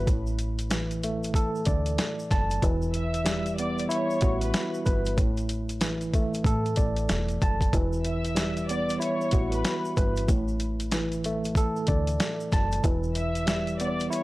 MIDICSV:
0, 0, Header, 1, 5, 480
1, 0, Start_track
1, 0, Tempo, 638298
1, 55, Time_signature, 4, 2, 24, 8
1, 10702, End_track
2, 0, Start_track
2, 0, Title_t, "Violin section"
2, 0, Program_c, 0, 48
2, 2198, Note_on_c, 0, 76, 80
2, 2204, Note_on_c, 0, 88, 59
2, 2657, Note_off_c, 0, 76, 0
2, 2660, Note_off_c, 0, 88, 0
2, 2693, Note_on_c, 0, 74, 90
2, 2700, Note_on_c, 0, 86, 71
2, 2910, Note_off_c, 0, 74, 0
2, 2913, Note_off_c, 0, 86, 0
2, 2928, Note_on_c, 0, 73, 90
2, 2934, Note_on_c, 0, 85, 66
2, 3298, Note_off_c, 0, 73, 0
2, 3302, Note_off_c, 0, 85, 0
2, 3312, Note_on_c, 0, 71, 70
2, 3319, Note_on_c, 0, 83, 62
2, 3534, Note_off_c, 0, 71, 0
2, 3538, Note_off_c, 0, 83, 0
2, 6044, Note_on_c, 0, 76, 77
2, 6051, Note_on_c, 0, 88, 61
2, 6500, Note_off_c, 0, 76, 0
2, 6504, Note_off_c, 0, 88, 0
2, 6528, Note_on_c, 0, 74, 97
2, 6532, Note_on_c, 0, 86, 73
2, 6747, Note_off_c, 0, 74, 0
2, 6749, Note_off_c, 0, 86, 0
2, 6772, Note_on_c, 0, 73, 86
2, 6778, Note_on_c, 0, 85, 73
2, 7140, Note_off_c, 0, 73, 0
2, 7143, Note_off_c, 0, 85, 0
2, 7167, Note_on_c, 0, 71, 78
2, 7173, Note_on_c, 0, 83, 67
2, 7382, Note_off_c, 0, 71, 0
2, 7386, Note_off_c, 0, 83, 0
2, 9882, Note_on_c, 0, 76, 85
2, 9886, Note_on_c, 0, 88, 62
2, 10339, Note_off_c, 0, 76, 0
2, 10342, Note_off_c, 0, 88, 0
2, 10377, Note_on_c, 0, 74, 95
2, 10382, Note_on_c, 0, 86, 73
2, 10592, Note_off_c, 0, 74, 0
2, 10595, Note_off_c, 0, 86, 0
2, 10611, Note_on_c, 0, 73, 90
2, 10617, Note_on_c, 0, 85, 69
2, 10702, Note_off_c, 0, 73, 0
2, 10702, Note_off_c, 0, 85, 0
2, 10702, End_track
3, 0, Start_track
3, 0, Title_t, "Tine electric piano"
3, 0, Program_c, 1, 4
3, 0, Control_c, 1, 64, 127
3, 47, Note_on_c, 1, 45, 93
3, 66, Control_c, 1, 64, 0
3, 208, Control_c, 1, 64, 127
3, 528, Note_on_c, 1, 52, 88
3, 782, Note_on_c, 1, 57, 84
3, 1019, Note_on_c, 1, 69, 97
3, 1252, Note_on_c, 1, 74, 84
3, 1741, Note_on_c, 1, 81, 93
3, 1961, Note_off_c, 1, 52, 0
3, 1970, Note_on_c, 1, 52, 97
3, 1971, Note_off_c, 1, 45, 0
3, 1974, Note_off_c, 1, 74, 0
3, 1977, Note_off_c, 1, 69, 0
3, 1978, Note_off_c, 1, 57, 0
3, 1978, Note_off_c, 1, 81, 0
3, 1983, Control_c, 1, 64, 0
3, 2128, Control_c, 1, 64, 127
3, 2440, Note_on_c, 1, 55, 86
3, 2703, Note_on_c, 1, 59, 81
3, 2925, Note_on_c, 1, 64, 99
3, 3170, Note_on_c, 1, 66, 93
3, 3653, Note_on_c, 1, 71, 98
3, 3884, Note_on_c, 1, 45, 93
3, 3887, Note_off_c, 1, 55, 0
3, 3890, Note_off_c, 1, 64, 0
3, 3892, Note_off_c, 1, 66, 0
3, 3893, Note_off_c, 1, 52, 0
3, 3894, Note_off_c, 1, 71, 0
3, 3899, Note_off_c, 1, 59, 0
3, 3903, Control_c, 1, 64, 0
3, 4027, Control_c, 1, 64, 127
3, 4368, Note_on_c, 1, 52, 84
3, 4623, Note_on_c, 1, 57, 87
3, 4859, Note_on_c, 1, 69, 103
3, 5092, Note_on_c, 1, 74, 81
3, 5581, Note_on_c, 1, 81, 91
3, 5801, Note_off_c, 1, 52, 0
3, 5809, Note_off_c, 1, 45, 0
3, 5810, Note_on_c, 1, 52, 93
3, 5813, Note_off_c, 1, 74, 0
3, 5817, Note_off_c, 1, 69, 0
3, 5818, Note_off_c, 1, 81, 0
3, 5819, Note_off_c, 1, 57, 0
3, 5825, Control_c, 1, 64, 0
3, 5952, Control_c, 1, 64, 127
3, 6279, Note_on_c, 1, 55, 79
3, 6545, Note_on_c, 1, 59, 84
3, 6765, Note_on_c, 1, 64, 94
3, 7013, Note_on_c, 1, 66, 89
3, 7495, Note_on_c, 1, 71, 97
3, 7727, Note_off_c, 1, 55, 0
3, 7727, Note_on_c, 1, 45, 96
3, 7730, Note_off_c, 1, 64, 0
3, 7732, Note_off_c, 1, 52, 0
3, 7734, Note_off_c, 1, 66, 0
3, 7735, Note_off_c, 1, 71, 0
3, 7740, Note_off_c, 1, 59, 0
3, 7745, Control_c, 1, 64, 0
3, 7858, Control_c, 1, 64, 127
3, 8210, Note_on_c, 1, 52, 89
3, 8465, Note_on_c, 1, 57, 87
3, 8703, Note_on_c, 1, 69, 104
3, 8936, Note_on_c, 1, 74, 83
3, 9424, Note_on_c, 1, 81, 92
3, 9643, Note_off_c, 1, 52, 0
3, 9651, Note_off_c, 1, 45, 0
3, 9652, Note_on_c, 1, 52, 92
3, 9655, Note_off_c, 1, 74, 0
3, 9659, Note_off_c, 1, 69, 0
3, 9660, Note_off_c, 1, 57, 0
3, 9660, Note_off_c, 1, 81, 0
3, 9665, Control_c, 1, 64, 0
3, 9792, Control_c, 1, 64, 127
3, 10124, Note_on_c, 1, 55, 82
3, 10385, Note_on_c, 1, 59, 83
3, 10606, Note_on_c, 1, 64, 97
3, 10702, Note_off_c, 1, 52, 0
3, 10702, Note_off_c, 1, 55, 0
3, 10702, Note_off_c, 1, 59, 0
3, 10702, Note_off_c, 1, 64, 0
3, 10702, End_track
4, 0, Start_track
4, 0, Title_t, "Fingered electric bass"
4, 0, Program_c, 2, 33
4, 58, Note_on_c, 2, 33, 99
4, 986, Note_off_c, 2, 33, 0
4, 1259, Note_on_c, 2, 38, 85
4, 1477, Note_off_c, 2, 38, 0
4, 1741, Note_on_c, 2, 30, 92
4, 1958, Note_off_c, 2, 30, 0
4, 1977, Note_on_c, 2, 28, 103
4, 2906, Note_off_c, 2, 28, 0
4, 3179, Note_on_c, 2, 33, 93
4, 3397, Note_off_c, 2, 33, 0
4, 3661, Note_on_c, 2, 31, 94
4, 3896, Note_off_c, 2, 31, 0
4, 3896, Note_on_c, 2, 33, 105
4, 4826, Note_off_c, 2, 33, 0
4, 4848, Note_on_c, 2, 45, 105
4, 5071, Note_off_c, 2, 45, 0
4, 5098, Note_on_c, 2, 33, 85
4, 5316, Note_off_c, 2, 33, 0
4, 5341, Note_on_c, 2, 28, 88
4, 5558, Note_off_c, 2, 28, 0
4, 5580, Note_on_c, 2, 30, 93
4, 5797, Note_off_c, 2, 30, 0
4, 5817, Note_on_c, 2, 28, 103
4, 6746, Note_off_c, 2, 28, 0
4, 7018, Note_on_c, 2, 33, 91
4, 7236, Note_off_c, 2, 33, 0
4, 7502, Note_on_c, 2, 31, 98
4, 7718, Note_off_c, 2, 31, 0
4, 7737, Note_on_c, 2, 33, 105
4, 8666, Note_off_c, 2, 33, 0
4, 8939, Note_on_c, 2, 38, 85
4, 9157, Note_off_c, 2, 38, 0
4, 9422, Note_on_c, 2, 30, 95
4, 9638, Note_off_c, 2, 30, 0
4, 9658, Note_on_c, 2, 28, 101
4, 10586, Note_off_c, 2, 28, 0
4, 10702, End_track
5, 0, Start_track
5, 0, Title_t, "Drums"
5, 54, Note_on_c, 9, 82, 75
5, 55, Note_on_c, 9, 36, 121
5, 55, Note_on_c, 9, 42, 87
5, 129, Note_off_c, 9, 82, 0
5, 130, Note_off_c, 9, 36, 0
5, 131, Note_off_c, 9, 42, 0
5, 200, Note_on_c, 9, 82, 45
5, 275, Note_off_c, 9, 82, 0
5, 290, Note_on_c, 9, 42, 70
5, 293, Note_on_c, 9, 82, 48
5, 365, Note_off_c, 9, 42, 0
5, 368, Note_off_c, 9, 82, 0
5, 441, Note_on_c, 9, 42, 54
5, 450, Note_on_c, 9, 82, 51
5, 516, Note_off_c, 9, 42, 0
5, 525, Note_off_c, 9, 82, 0
5, 530, Note_on_c, 9, 42, 90
5, 531, Note_on_c, 9, 82, 77
5, 535, Note_on_c, 9, 38, 115
5, 606, Note_off_c, 9, 42, 0
5, 606, Note_off_c, 9, 82, 0
5, 610, Note_off_c, 9, 38, 0
5, 683, Note_on_c, 9, 42, 38
5, 685, Note_on_c, 9, 82, 54
5, 758, Note_off_c, 9, 42, 0
5, 761, Note_off_c, 9, 82, 0
5, 776, Note_on_c, 9, 82, 53
5, 778, Note_on_c, 9, 42, 73
5, 851, Note_off_c, 9, 82, 0
5, 853, Note_off_c, 9, 42, 0
5, 927, Note_on_c, 9, 82, 53
5, 936, Note_on_c, 9, 42, 58
5, 1002, Note_off_c, 9, 82, 0
5, 1008, Note_on_c, 9, 36, 99
5, 1011, Note_off_c, 9, 42, 0
5, 1018, Note_on_c, 9, 82, 74
5, 1023, Note_on_c, 9, 42, 84
5, 1083, Note_off_c, 9, 36, 0
5, 1093, Note_off_c, 9, 82, 0
5, 1099, Note_off_c, 9, 42, 0
5, 1169, Note_on_c, 9, 82, 44
5, 1244, Note_off_c, 9, 82, 0
5, 1245, Note_on_c, 9, 42, 75
5, 1254, Note_on_c, 9, 82, 56
5, 1256, Note_on_c, 9, 36, 99
5, 1320, Note_off_c, 9, 42, 0
5, 1329, Note_off_c, 9, 82, 0
5, 1331, Note_off_c, 9, 36, 0
5, 1399, Note_on_c, 9, 42, 56
5, 1407, Note_on_c, 9, 82, 51
5, 1474, Note_off_c, 9, 42, 0
5, 1482, Note_off_c, 9, 82, 0
5, 1492, Note_on_c, 9, 42, 90
5, 1495, Note_on_c, 9, 38, 111
5, 1499, Note_on_c, 9, 82, 59
5, 1567, Note_off_c, 9, 42, 0
5, 1570, Note_off_c, 9, 38, 0
5, 1574, Note_off_c, 9, 82, 0
5, 1649, Note_on_c, 9, 82, 53
5, 1724, Note_off_c, 9, 82, 0
5, 1735, Note_on_c, 9, 38, 38
5, 1736, Note_on_c, 9, 82, 44
5, 1738, Note_on_c, 9, 36, 93
5, 1741, Note_on_c, 9, 42, 78
5, 1810, Note_off_c, 9, 38, 0
5, 1811, Note_off_c, 9, 82, 0
5, 1814, Note_off_c, 9, 36, 0
5, 1816, Note_off_c, 9, 42, 0
5, 1884, Note_on_c, 9, 82, 52
5, 1889, Note_on_c, 9, 42, 60
5, 1959, Note_off_c, 9, 82, 0
5, 1964, Note_off_c, 9, 42, 0
5, 1974, Note_on_c, 9, 36, 117
5, 1975, Note_on_c, 9, 42, 88
5, 1975, Note_on_c, 9, 82, 76
5, 2049, Note_off_c, 9, 36, 0
5, 2050, Note_off_c, 9, 42, 0
5, 2050, Note_off_c, 9, 82, 0
5, 2120, Note_on_c, 9, 82, 45
5, 2196, Note_off_c, 9, 82, 0
5, 2210, Note_on_c, 9, 42, 69
5, 2212, Note_on_c, 9, 82, 48
5, 2285, Note_off_c, 9, 42, 0
5, 2287, Note_off_c, 9, 82, 0
5, 2361, Note_on_c, 9, 42, 55
5, 2370, Note_on_c, 9, 82, 50
5, 2437, Note_off_c, 9, 42, 0
5, 2445, Note_off_c, 9, 82, 0
5, 2449, Note_on_c, 9, 42, 93
5, 2452, Note_on_c, 9, 82, 75
5, 2454, Note_on_c, 9, 38, 110
5, 2524, Note_off_c, 9, 42, 0
5, 2527, Note_off_c, 9, 82, 0
5, 2529, Note_off_c, 9, 38, 0
5, 2601, Note_on_c, 9, 42, 36
5, 2605, Note_on_c, 9, 82, 56
5, 2676, Note_off_c, 9, 42, 0
5, 2680, Note_off_c, 9, 82, 0
5, 2695, Note_on_c, 9, 82, 53
5, 2696, Note_on_c, 9, 42, 74
5, 2770, Note_off_c, 9, 82, 0
5, 2771, Note_off_c, 9, 42, 0
5, 2845, Note_on_c, 9, 82, 52
5, 2854, Note_on_c, 9, 42, 58
5, 2920, Note_off_c, 9, 82, 0
5, 2929, Note_off_c, 9, 42, 0
5, 2934, Note_on_c, 9, 82, 75
5, 2943, Note_on_c, 9, 42, 83
5, 3010, Note_off_c, 9, 82, 0
5, 3018, Note_off_c, 9, 42, 0
5, 3086, Note_on_c, 9, 82, 46
5, 3161, Note_off_c, 9, 82, 0
5, 3164, Note_on_c, 9, 42, 73
5, 3172, Note_on_c, 9, 82, 56
5, 3176, Note_on_c, 9, 36, 95
5, 3240, Note_off_c, 9, 42, 0
5, 3247, Note_off_c, 9, 82, 0
5, 3251, Note_off_c, 9, 36, 0
5, 3319, Note_on_c, 9, 42, 57
5, 3324, Note_on_c, 9, 82, 52
5, 3394, Note_off_c, 9, 42, 0
5, 3399, Note_off_c, 9, 82, 0
5, 3412, Note_on_c, 9, 42, 92
5, 3415, Note_on_c, 9, 38, 114
5, 3417, Note_on_c, 9, 82, 60
5, 3487, Note_off_c, 9, 42, 0
5, 3490, Note_off_c, 9, 38, 0
5, 3492, Note_off_c, 9, 82, 0
5, 3565, Note_on_c, 9, 82, 50
5, 3641, Note_off_c, 9, 82, 0
5, 3653, Note_on_c, 9, 82, 44
5, 3658, Note_on_c, 9, 36, 93
5, 3660, Note_on_c, 9, 42, 77
5, 3728, Note_off_c, 9, 82, 0
5, 3733, Note_off_c, 9, 36, 0
5, 3735, Note_off_c, 9, 42, 0
5, 3800, Note_on_c, 9, 82, 51
5, 3809, Note_on_c, 9, 42, 64
5, 3875, Note_off_c, 9, 82, 0
5, 3884, Note_off_c, 9, 42, 0
5, 3892, Note_on_c, 9, 82, 74
5, 3894, Note_on_c, 9, 36, 122
5, 3894, Note_on_c, 9, 42, 88
5, 3968, Note_off_c, 9, 82, 0
5, 3969, Note_off_c, 9, 36, 0
5, 3970, Note_off_c, 9, 42, 0
5, 4040, Note_on_c, 9, 82, 44
5, 4042, Note_on_c, 9, 42, 38
5, 4115, Note_off_c, 9, 82, 0
5, 4117, Note_off_c, 9, 42, 0
5, 4129, Note_on_c, 9, 42, 70
5, 4133, Note_on_c, 9, 82, 48
5, 4205, Note_off_c, 9, 42, 0
5, 4208, Note_off_c, 9, 82, 0
5, 4281, Note_on_c, 9, 42, 51
5, 4288, Note_on_c, 9, 82, 50
5, 4356, Note_off_c, 9, 42, 0
5, 4363, Note_off_c, 9, 82, 0
5, 4368, Note_on_c, 9, 42, 93
5, 4370, Note_on_c, 9, 82, 77
5, 4373, Note_on_c, 9, 38, 115
5, 4443, Note_off_c, 9, 42, 0
5, 4446, Note_off_c, 9, 82, 0
5, 4448, Note_off_c, 9, 38, 0
5, 4520, Note_on_c, 9, 42, 36
5, 4525, Note_on_c, 9, 82, 55
5, 4595, Note_off_c, 9, 42, 0
5, 4600, Note_off_c, 9, 82, 0
5, 4614, Note_on_c, 9, 36, 100
5, 4615, Note_on_c, 9, 42, 73
5, 4617, Note_on_c, 9, 82, 51
5, 4690, Note_off_c, 9, 36, 0
5, 4690, Note_off_c, 9, 42, 0
5, 4692, Note_off_c, 9, 82, 0
5, 4766, Note_on_c, 9, 82, 53
5, 4773, Note_on_c, 9, 42, 57
5, 4842, Note_off_c, 9, 82, 0
5, 4846, Note_on_c, 9, 36, 102
5, 4848, Note_off_c, 9, 42, 0
5, 4855, Note_on_c, 9, 82, 74
5, 4861, Note_on_c, 9, 42, 87
5, 4921, Note_off_c, 9, 36, 0
5, 4930, Note_off_c, 9, 82, 0
5, 4936, Note_off_c, 9, 42, 0
5, 5006, Note_on_c, 9, 82, 45
5, 5007, Note_on_c, 9, 42, 36
5, 5081, Note_off_c, 9, 82, 0
5, 5082, Note_off_c, 9, 42, 0
5, 5084, Note_on_c, 9, 42, 73
5, 5092, Note_on_c, 9, 82, 56
5, 5095, Note_on_c, 9, 36, 97
5, 5159, Note_off_c, 9, 42, 0
5, 5167, Note_off_c, 9, 82, 0
5, 5170, Note_off_c, 9, 36, 0
5, 5237, Note_on_c, 9, 42, 55
5, 5246, Note_on_c, 9, 82, 50
5, 5312, Note_off_c, 9, 42, 0
5, 5321, Note_off_c, 9, 82, 0
5, 5332, Note_on_c, 9, 42, 98
5, 5335, Note_on_c, 9, 38, 111
5, 5338, Note_on_c, 9, 82, 59
5, 5407, Note_off_c, 9, 42, 0
5, 5410, Note_off_c, 9, 38, 0
5, 5414, Note_off_c, 9, 82, 0
5, 5478, Note_on_c, 9, 42, 37
5, 5487, Note_on_c, 9, 82, 51
5, 5553, Note_off_c, 9, 42, 0
5, 5562, Note_off_c, 9, 82, 0
5, 5576, Note_on_c, 9, 82, 44
5, 5578, Note_on_c, 9, 36, 91
5, 5580, Note_on_c, 9, 42, 79
5, 5651, Note_off_c, 9, 82, 0
5, 5653, Note_off_c, 9, 36, 0
5, 5655, Note_off_c, 9, 42, 0
5, 5720, Note_on_c, 9, 36, 91
5, 5724, Note_on_c, 9, 82, 51
5, 5730, Note_on_c, 9, 42, 61
5, 5796, Note_off_c, 9, 36, 0
5, 5799, Note_off_c, 9, 82, 0
5, 5805, Note_off_c, 9, 42, 0
5, 5814, Note_on_c, 9, 36, 117
5, 5816, Note_on_c, 9, 42, 91
5, 5816, Note_on_c, 9, 82, 77
5, 5889, Note_off_c, 9, 36, 0
5, 5891, Note_off_c, 9, 42, 0
5, 5891, Note_off_c, 9, 82, 0
5, 5963, Note_on_c, 9, 82, 47
5, 6038, Note_off_c, 9, 82, 0
5, 6050, Note_on_c, 9, 42, 71
5, 6055, Note_on_c, 9, 82, 49
5, 6126, Note_off_c, 9, 42, 0
5, 6131, Note_off_c, 9, 82, 0
5, 6201, Note_on_c, 9, 42, 53
5, 6210, Note_on_c, 9, 82, 49
5, 6276, Note_off_c, 9, 42, 0
5, 6285, Note_off_c, 9, 82, 0
5, 6290, Note_on_c, 9, 42, 94
5, 6290, Note_on_c, 9, 82, 75
5, 6295, Note_on_c, 9, 38, 113
5, 6365, Note_off_c, 9, 42, 0
5, 6366, Note_off_c, 9, 82, 0
5, 6370, Note_off_c, 9, 38, 0
5, 6443, Note_on_c, 9, 42, 37
5, 6445, Note_on_c, 9, 82, 54
5, 6518, Note_off_c, 9, 42, 0
5, 6520, Note_off_c, 9, 82, 0
5, 6536, Note_on_c, 9, 42, 71
5, 6537, Note_on_c, 9, 82, 53
5, 6612, Note_off_c, 9, 42, 0
5, 6613, Note_off_c, 9, 82, 0
5, 6686, Note_on_c, 9, 82, 54
5, 6694, Note_on_c, 9, 42, 58
5, 6762, Note_off_c, 9, 82, 0
5, 6770, Note_off_c, 9, 42, 0
5, 6775, Note_on_c, 9, 82, 75
5, 6783, Note_on_c, 9, 42, 84
5, 6850, Note_off_c, 9, 82, 0
5, 6858, Note_off_c, 9, 42, 0
5, 6926, Note_on_c, 9, 82, 44
5, 7002, Note_off_c, 9, 82, 0
5, 7003, Note_on_c, 9, 42, 75
5, 7012, Note_on_c, 9, 82, 58
5, 7015, Note_on_c, 9, 36, 98
5, 7079, Note_off_c, 9, 42, 0
5, 7087, Note_off_c, 9, 82, 0
5, 7090, Note_off_c, 9, 36, 0
5, 7159, Note_on_c, 9, 42, 55
5, 7166, Note_on_c, 9, 82, 52
5, 7234, Note_off_c, 9, 42, 0
5, 7241, Note_off_c, 9, 82, 0
5, 7253, Note_on_c, 9, 42, 95
5, 7256, Note_on_c, 9, 38, 109
5, 7257, Note_on_c, 9, 82, 57
5, 7328, Note_off_c, 9, 42, 0
5, 7331, Note_off_c, 9, 38, 0
5, 7332, Note_off_c, 9, 82, 0
5, 7406, Note_on_c, 9, 82, 51
5, 7481, Note_off_c, 9, 82, 0
5, 7494, Note_on_c, 9, 82, 46
5, 7499, Note_on_c, 9, 36, 94
5, 7502, Note_on_c, 9, 42, 77
5, 7569, Note_off_c, 9, 82, 0
5, 7574, Note_off_c, 9, 36, 0
5, 7577, Note_off_c, 9, 42, 0
5, 7641, Note_on_c, 9, 82, 52
5, 7651, Note_on_c, 9, 42, 65
5, 7716, Note_off_c, 9, 82, 0
5, 7726, Note_off_c, 9, 42, 0
5, 7734, Note_on_c, 9, 36, 121
5, 7734, Note_on_c, 9, 82, 77
5, 7735, Note_on_c, 9, 42, 90
5, 7809, Note_off_c, 9, 36, 0
5, 7809, Note_off_c, 9, 82, 0
5, 7810, Note_off_c, 9, 42, 0
5, 7882, Note_on_c, 9, 82, 45
5, 7957, Note_off_c, 9, 82, 0
5, 7970, Note_on_c, 9, 42, 70
5, 7973, Note_on_c, 9, 82, 48
5, 8045, Note_off_c, 9, 42, 0
5, 8048, Note_off_c, 9, 82, 0
5, 8121, Note_on_c, 9, 42, 55
5, 8129, Note_on_c, 9, 82, 51
5, 8196, Note_off_c, 9, 42, 0
5, 8204, Note_off_c, 9, 82, 0
5, 8208, Note_on_c, 9, 42, 91
5, 8212, Note_on_c, 9, 82, 74
5, 8213, Note_on_c, 9, 38, 116
5, 8284, Note_off_c, 9, 42, 0
5, 8287, Note_off_c, 9, 82, 0
5, 8289, Note_off_c, 9, 38, 0
5, 8361, Note_on_c, 9, 42, 36
5, 8367, Note_on_c, 9, 82, 54
5, 8436, Note_off_c, 9, 42, 0
5, 8442, Note_off_c, 9, 82, 0
5, 8456, Note_on_c, 9, 42, 75
5, 8457, Note_on_c, 9, 82, 54
5, 8531, Note_off_c, 9, 42, 0
5, 8532, Note_off_c, 9, 82, 0
5, 8606, Note_on_c, 9, 82, 53
5, 8614, Note_on_c, 9, 42, 58
5, 8681, Note_off_c, 9, 82, 0
5, 8687, Note_on_c, 9, 36, 98
5, 8689, Note_off_c, 9, 42, 0
5, 8696, Note_on_c, 9, 82, 75
5, 8703, Note_on_c, 9, 42, 83
5, 8763, Note_off_c, 9, 36, 0
5, 8771, Note_off_c, 9, 82, 0
5, 8778, Note_off_c, 9, 42, 0
5, 8846, Note_on_c, 9, 82, 43
5, 8921, Note_off_c, 9, 82, 0
5, 8925, Note_on_c, 9, 42, 73
5, 8932, Note_on_c, 9, 82, 57
5, 8936, Note_on_c, 9, 36, 100
5, 9000, Note_off_c, 9, 42, 0
5, 9007, Note_off_c, 9, 82, 0
5, 9011, Note_off_c, 9, 36, 0
5, 9079, Note_on_c, 9, 42, 57
5, 9085, Note_on_c, 9, 82, 53
5, 9154, Note_off_c, 9, 42, 0
5, 9160, Note_off_c, 9, 82, 0
5, 9173, Note_on_c, 9, 42, 95
5, 9176, Note_on_c, 9, 38, 109
5, 9178, Note_on_c, 9, 82, 59
5, 9248, Note_off_c, 9, 42, 0
5, 9251, Note_off_c, 9, 38, 0
5, 9254, Note_off_c, 9, 82, 0
5, 9327, Note_on_c, 9, 82, 51
5, 9402, Note_off_c, 9, 82, 0
5, 9415, Note_on_c, 9, 82, 45
5, 9416, Note_on_c, 9, 38, 40
5, 9419, Note_on_c, 9, 36, 94
5, 9422, Note_on_c, 9, 42, 80
5, 9491, Note_off_c, 9, 38, 0
5, 9491, Note_off_c, 9, 82, 0
5, 9495, Note_off_c, 9, 36, 0
5, 9497, Note_off_c, 9, 42, 0
5, 9564, Note_on_c, 9, 82, 52
5, 9571, Note_on_c, 9, 42, 62
5, 9639, Note_off_c, 9, 82, 0
5, 9646, Note_off_c, 9, 42, 0
5, 9655, Note_on_c, 9, 36, 121
5, 9655, Note_on_c, 9, 82, 76
5, 9657, Note_on_c, 9, 42, 87
5, 9730, Note_off_c, 9, 36, 0
5, 9730, Note_off_c, 9, 82, 0
5, 9732, Note_off_c, 9, 42, 0
5, 9802, Note_on_c, 9, 82, 46
5, 9877, Note_off_c, 9, 82, 0
5, 9891, Note_on_c, 9, 42, 69
5, 9895, Note_on_c, 9, 82, 48
5, 9966, Note_off_c, 9, 42, 0
5, 9970, Note_off_c, 9, 82, 0
5, 10042, Note_on_c, 9, 42, 52
5, 10051, Note_on_c, 9, 82, 51
5, 10117, Note_off_c, 9, 42, 0
5, 10127, Note_off_c, 9, 82, 0
5, 10131, Note_on_c, 9, 42, 92
5, 10133, Note_on_c, 9, 82, 75
5, 10136, Note_on_c, 9, 38, 114
5, 10206, Note_off_c, 9, 42, 0
5, 10208, Note_off_c, 9, 82, 0
5, 10211, Note_off_c, 9, 38, 0
5, 10282, Note_on_c, 9, 42, 36
5, 10288, Note_on_c, 9, 82, 53
5, 10357, Note_off_c, 9, 42, 0
5, 10363, Note_off_c, 9, 82, 0
5, 10376, Note_on_c, 9, 42, 74
5, 10379, Note_on_c, 9, 82, 54
5, 10452, Note_off_c, 9, 42, 0
5, 10454, Note_off_c, 9, 82, 0
5, 10526, Note_on_c, 9, 82, 54
5, 10535, Note_on_c, 9, 42, 55
5, 10602, Note_off_c, 9, 82, 0
5, 10610, Note_off_c, 9, 42, 0
5, 10618, Note_on_c, 9, 82, 74
5, 10625, Note_on_c, 9, 42, 85
5, 10693, Note_off_c, 9, 82, 0
5, 10700, Note_off_c, 9, 42, 0
5, 10702, End_track
0, 0, End_of_file